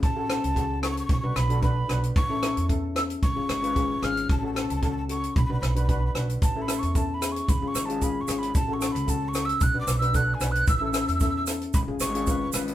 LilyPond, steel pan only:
\new Staff \with { instrumentName = "Steel pan" } { \time 4/4 \key a \major \tempo 4 = 113 r16 <cis' fis' a'>16 <cis' fis' a'>16 r16 <cis' fis' gis'>16 r16 <cis' fis' a'>8 r16 <d' fis' b'>16 r16 <d' fis' a'>16 <d' fis' b'>16 r16 <d' fis' b'>8 | r16 <cis' e' a'>16 <cis' e' a'>16 r16 <cis' e' a'>16 r16 <cis' e' a'>8 r16 <cis' eis' gis'>16 r16 <cis' eis' b'>16 <cis' eis' gis'>16 r16 <cis' eis' gis'>8 | r16 <cis' fis' a'>16 <cis' fis' a'>16 r16 <cis' fis' a'>16 r16 <cis' fis' a'>8 r16 <d' fis' b'>16 r16 <d' fis' b'>16 <d' fis' b'>16 r16 <d' fis' b'>8 | r16 <cis' e' a'>16 <cis' e' a'>16 r16 <cis' e' a'>16 r16 <cis' e' gis'>8 r16 <cis' eis' gis'>16 r16 <cis' eis' gis'>16 <cis' eis' gis'>16 r16 <cis' eis' gis'>8 |
r16 <cis' fis' a'>16 <cis' fis' a'>16 r16 <cis' fis' a'>16 r16 <cis' fis' a'>8 r16 <d' fis' b'>16 r16 <d' fis' b'>16 <d' fis' a'>16 r16 <d' fis' b'>8 | r16 <cis' e' a'>16 <cis' e' a'>16 r16 <cis' e' a'>16 r16 <cis' e' a'>8 r16 <cis' eis' gis'>16 r16 <cis' eis' gis'>16 <cis' eis' b'>16 r16 <cis' eis' b'>8 | }